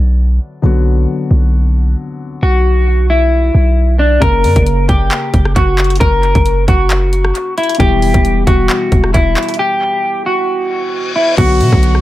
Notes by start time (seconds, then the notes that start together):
Already playing: B1 D3 F#3 B3 F#4
0.62 B1 D3 F#3 B3 F#4
1.31 B1
2.43 B1 F#4
3.10 E4
3.55 B1
3.99 D4
4.20 F#1 C#3 A#3 A#4, kick, closed hi-hat
4.44 F#2, closed hi-hat, open hi-hat
4.56 F#1, kick, closed hi-hat
4.67 closed hi-hat
4.89 F#1 G4, kick, closed hi-hat
5.11 clap, closed hi-hat
5.34 F#1, kick, closed hi-hat
5.45 cross-stick
5.56 F#1 F#4, kick, closed hi-hat
5.78 clap, closed hi-hat
5.84 closed hi-hat
5.90 closed hi-hat
5.96 closed hi-hat
6.00 F#1 A#4, kick, closed hi-hat
6.23 closed hi-hat
6.35 F#1, kick, closed hi-hat
6.46 closed hi-hat
6.68 F#1 F#4, kick, closed hi-hat
6.90 clap, closed hi-hat
7.13 closed hi-hat
7.25 cross-stick
7.35 closed hi-hat
7.58 E4, closed hi-hat
7.63 closed hi-hat
7.69 closed hi-hat
7.75 B2, closed hi-hat
7.79 E1 E3 G3 E4 G4, kick, closed hi-hat
8.02 closed hi-hat, open hi-hat
8.14 E1, kick, closed hi-hat
8.25 closed hi-hat
8.47 E1 F#4, kick, closed hi-hat
8.70 clap, closed hi-hat
8.92 E1, kick, closed hi-hat
9.04 cross-stick
9.14 E1 E4, kick, closed hi-hat
9.37 clap, closed hi-hat
9.43 closed hi-hat
9.49 closed hi-hat
9.54 closed hi-hat
9.59 G4
10.26 F#4
10.49 reverse cymbal
11.16 E4
11.37 B1 D3 F#3 B3 F#4 B4 F#5, kick, closed hi-hat, crash, downlifter
11.61 B2, open hi-hat
11.72 B1, kick
11.83 closed hi-hat
11.95 cross-stick